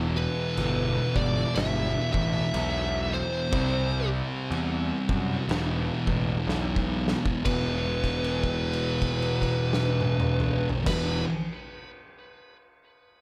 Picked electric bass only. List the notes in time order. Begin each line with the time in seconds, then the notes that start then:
Already playing: E1
0.57 G1
1.16 G1
1.56 G1
2.14 A1
2.54 B1
3.53 C2
4.50 E2
5.09 F#2
5.49 E1
6.07 A1
6.47 B1
7.46 E1
10.86 E1